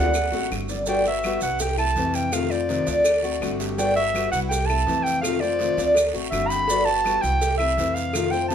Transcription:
Already playing: upright bass D2, nylon-string guitar D#3 A3 C4 F4, cuban tres D4
0.00 clarinet F#5
0.14 muted nylon-string guitar stroke, high bongo, long guiro, claves, maracas
0.32 upright bass A1, nylon-string guitar A3 C4 F#4, cuban tres F#4, high bongo, maracas
0.50 upright bass G1, nylon-string guitar D3 A3 C4 F#4, short guiro, claves, maracas
0.69 cuban tres D5, low bongo, short guiro, maracas
0.86 nylon-string guitar G3 B3 F#4, cuban tres D4, clarinet G5, cowbell, long guiro, maracas
1.05 nylon-string guitar B3 F#4, cuban tres F#4, clarinet E5, maracas
1.23 nylon-string guitar G3 B3 F#4, cowbell, short guiro, claves, maracas
1.41 upright bass C2, nylon-string guitar B3 F#4, cuban tres E4, clarinet F#5, short guiro, maracas
1.59 cuban tres G4, clarinet G5, muted nylon-string guitar stroke, cowbell, long guiro, maracas
1.78 nylon-string guitar A3 C4 E4, cuban tres A4, clarinet A5, claves, maracas
1.95 upright bass F2, nylon-string guitar C3 E3 A3 C4 E4, cowbell, short guiro, maracas
2.14 cuban tres F5, clarinet G5, short guiro, maracas
2.32 nylon-string guitar C3 D#3 A3 C4 F4, clarinet F5, cowbell, long guiro, claves, maracas
2.50 nylon-string guitar A3 C4 F4, cuban tres C5, clarinet D5, maracas
2.69 nylon-string guitar C3 D#3 A3 C4 F4, cowbell, short guiro, maracas
2.87 upright bass D2, nylon-string guitar A3 C4 F4, cuban tres D4, cowbell, short guiro, maracas
3.04 muted nylon-string guitar stroke, cowbell, long guiro, claves, maracas
3.23 nylon-string guitar A3 C4 F#4, cuban tres F#4, maracas
3.40 upright bass G1, nylon-string guitar D3 A3 C4 F#4, cowbell, short guiro, claves, maracas
3.60 cuban tres G4, cowbell, short guiro, maracas
3.77 nylon-string guitar G3 B3 F#4, cuban tres D4, clarinet G5, cowbell, long guiro, maracas
3.96 nylon-string guitar B3 F#4, cuban tres F#4, clarinet E5, maracas
4.14 nylon-string guitar G3 B3 F#4, cowbell, short guiro, claves, maracas
4.32 upright bass C2, nylon-string guitar B3 F#4, cuban tres E4, clarinet F#5, short guiro, maracas
4.49 cuban tres G4, clarinet G5, muted nylon-string guitar stroke, cowbell, long guiro, maracas
4.66 nylon-string guitar E4, cuban tres A4, clarinet A5, claves, maracas
4.71 nylon-string guitar A3 C4
4.86 upright bass F2, nylon-string guitar C3 E3 A3 C4 E4, cowbell, short guiro, maracas
5.04 cuban tres F5, clarinet G5, short guiro, maracas
5.21 nylon-string guitar C3 D#3 A3, clarinet F5, cowbell, long guiro, claves, maracas
5.25 nylon-string guitar C4 F4
5.40 nylon-string guitar A3 C4 F4, cuban tres C5, clarinet D5, maracas
5.59 nylon-string guitar C3 D#3 A3 C4 F4, cowbell, short guiro, maracas
5.77 upright bass D2, nylon-string guitar A3 C4 F4, cuban tres D4, cowbell, short guiro, maracas
5.95 muted nylon-string guitar stroke, cowbell, long guiro, claves, maracas
6.14 upright bass A1, nylon-string guitar A3 C4 F#4, cuban tres F#4, maracas
6.30 upright bass G1, nylon-string guitar D3 A3 C4 F#4, clarinet E5, cowbell, short guiro, claves, maracas
6.48 cuban tres G4, clarinet B5, cowbell, short guiro, maracas
6.68 nylon-string guitar G3 B3 F#4, cuban tres D4, cowbell, long guiro, maracas
6.85 nylon-string guitar B3 F#4, cuban tres F#4, clarinet A5, maracas
7.04 nylon-string guitar G3 B3 F#4, cowbell, short guiro, claves, maracas
7.22 upright bass C2, cuban tres E4, nylon-string guitar F#4, clarinet G5, short guiro, maracas
7.26 nylon-string guitar B3
7.41 cuban tres G4, muted nylon-string guitar stroke, cowbell, long guiro, maracas
7.58 nylon-string guitar C4 E4, cuban tres A4, clarinet E5, claves, maracas
7.62 nylon-string guitar A3
7.77 upright bass F2, nylon-string guitar C3 E3 A3 C4 E4, cowbell, short guiro, maracas
7.94 clarinet F5, cuban tres F5, short guiro, maracas
8.13 nylon-string guitar C3 D#3 A3 C4 F4, cowbell, long guiro, claves, maracas
8.31 nylon-string guitar A3 C4 F4, cuban tres C5, clarinet G5, maracas
8.48 nylon-string guitar C3 D#3 A3 C4 F4, clarinet A5, cowbell, short guiro, maracas

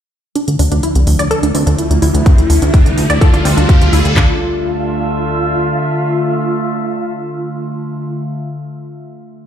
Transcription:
0.35 synth drone D3 A3, ambient pad D3 F3 A3 E4, analog synth lead D4, synth arpeggio sound D4, closed hi-hat, mid tom, riser
0.48 analog synth bass D2, closed hi-hat
0.59 analog synth bass D2, synth arpeggio sound D4, open hi-hat
0.72 analog synth bass D2, synth arpeggio sound D4, closed hi-hat
0.83 synth arpeggio sound E4, closed hi-hat
0.95 analog synth bass C2, closed hi-hat
1.07 analog synth bass D2, open hi-hat, mid tom
1.19 analog synth bass D2, synth arpeggio sound D5, closed hi-hat
1.31 synth arpeggio sound A4, closed hi-hat, mid tom
1.43 analog synth bass D2, synth arpeggio sound D4, closed hi-hat
1.55 analog synth bass D2, synth arpeggio sound C4, open hi-hat
1.67 analog synth bass D2, synth arpeggio sound D4, closed hi-hat, mid tom
1.78 analog synth lead E4, closed hi-hat
1.91 analog synth bass D2, closed hi-hat
2.02 analog synth bass D2, synth arpeggio sound E4, open hi-hat, mid tom
2.14 analog synth bass D2, closed hi-hat
2.26 ambient pad G3 D4 A4, synth arpeggio sound D4, kick, closed hi-hat, mid tom
2.38 analog synth bass D2, closed hi-hat
2.50 analog synth bass D2, synth arpeggio sound D4, open hi-hat, mid tom
2.62 analog synth bass D2, synth arpeggio sound D4, closed hi-hat
2.74 synth arpeggio sound E4, kick, closed hi-hat, mid tom
2.86 analog synth bass C2, closed hi-hat
2.97 analog synth bass D2, open hi-hat, mid tom
3.10 analog synth bass D2, synth arpeggio sound D5, closed hi-hat
3.21 analog synth lead F4, synth arpeggio sound A4, kick, closed hi-hat, mid tom
3.34 analog synth bass D2, synth arpeggio sound D4, closed hi-hat, mid tom
3.45 analog synth bass D2, synth arpeggio sound C4, open hi-hat, mid tom
3.57 analog synth bass D2, synth arpeggio sound D4, closed hi-hat, mid tom
3.69 kick, closed hi-hat, mid tom
3.75 mid tom
3.81 analog synth bass D2, closed hi-hat, mid tom
3.87 mid tom
3.93 analog synth bass D2, synth arpeggio sound E4, open hi-hat, mid tom
3.99 mid tom
4.05 analog synth bass D2, closed hi-hat, mid tom
4.11 mid tom
4.17 analog synth bass D2, synth drone D3 A3, ambient pad D3 A3 F4 E5, synth arpeggio sound D4, analog synth lead F4, kick, clap, floor tom

